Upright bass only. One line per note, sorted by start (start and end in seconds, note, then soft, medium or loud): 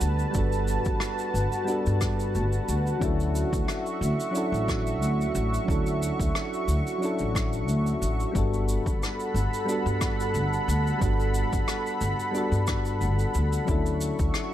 0.01 0.23 D2 medium
0.35 0.76 G1 medium
0.86 0.96 G1 medium
1.34 1.46 G1 medium
1.87 2.37 G2 medium
2.35 2.57 G1 medium
2.69 2.90 D2 medium
3.01 3.42 D2 medium
3.53 3.62 D2 medium
4.01 4.13 D2 medium
4.52 5.01 A1 medium
5.01 5.23 D2 medium
5.35 5.57 A1 loud
5.68 6.09 D2 medium
6.20 6.29 D2 medium
6.68 6.79 D2 medium
7.20 7.68 A1 medium
7.68 7.90 D2 medium
8.02 8.24 A1 medium
8.35 8.76 G1 medium
8.86 8.96 G1 medium
9.34 9.46 G1 medium
9.86 10.36 G2 medium
10.34 10.57 G1 medium
10.68 10.90 D2 medium
11.01 11.42 G1 medium
11.53 11.62 G1 medium
12.01 12.13 G1 medium
12.52 13.02 G2 medium
13.01 13.23 G1 medium
13.35 13.57 D2 medium
13.68 14.09 D2 medium
14.19 14.29 D2 medium